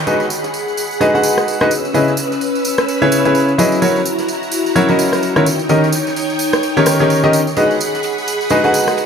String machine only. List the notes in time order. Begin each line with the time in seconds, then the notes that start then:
0.07 G#4 F#5 B5
1.71 C#4 B4 E6
3.82 E4 F#4 A#5
5.46 D#4 C#5 G5
7.57 G#4 F#5 B5